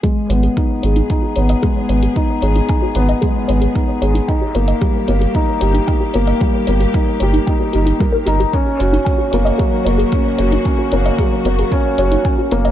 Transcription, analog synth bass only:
X:1
M:4/4
L:1/8
Q:1/4=113
K:G#m
V:1 name="Analog synth bass" clef=bass
z G,,, z G,,, z G,,, z G,,, | z G,,, z G,,, z G,,, z G,,, | z =G,,, z G,,, z G,,, z G,,, | z =G,,, z G,,, z G,,, z G,,, |
z F,,, z F,,, z F,,, z F,,, | z F,,, z F,,, z F,,, z F,,, |]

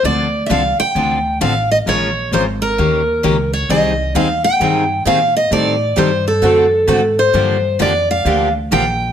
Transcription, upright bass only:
X:1
M:4/4
L:1/8
Q:"Swing" 1/4=132
K:Gm
V:1 name="Upright bass" clef=bass
D,,2 C,, z D,,2 A,,,2 | B,,,2 _A,,,2 E,,2 _D,,2 | C,,2 E,,2 G,,2 B,,2 | A,,2 G,,2 ^F,,2 _A,,2 |
G,,2 F,,2 D,,2 B,,,2 |]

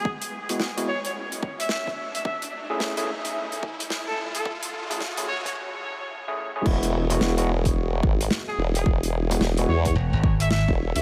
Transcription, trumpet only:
X:1
M:4/4
L:1/16
Q:"Swing 16ths" 1/4=109
K:Emix
V:1 name="Trumpet"
z6 c c z3 e e z2 e | e z12 A z A | z6 c c z8 | z12 z G z G |
z6 c c z3 e e z2 e |]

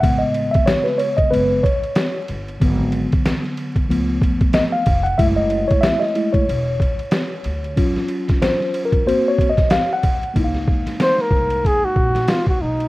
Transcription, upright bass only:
X:1
M:4/4
L:1/16
Q:"Swing 16ths" 1/4=93
K:Db
V:1 name="Upright bass" clef=bass
=A,,,3 z4 z G,,,2 z4 =G,,,2 | A,,,3 z4 z D,,2 z4 F,,,2 | G,,,3 z4 z _F,,,2 z4 =D,,2 | z16 |
D,,2 z4 C,,2 z2 B,,,2 z2 _C,,2 |]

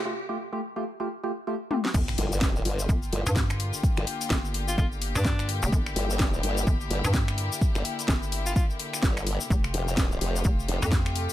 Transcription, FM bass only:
X:1
M:4/4
L:1/16
Q:"Swing 16ths" 1/4=127
K:Gdor
V:1 name="FM bass" clef=bass
z16 | G,,,2 z6 G,,,2 z G,,4 z | z4 G,,,4 G,,,3 G,,4 F,,, | G,,,2 z6 G,,,2 z G,,4 z |
z4 G,,,4 z8 | F,,,2 z6 F,,,2 z F,,4 z |]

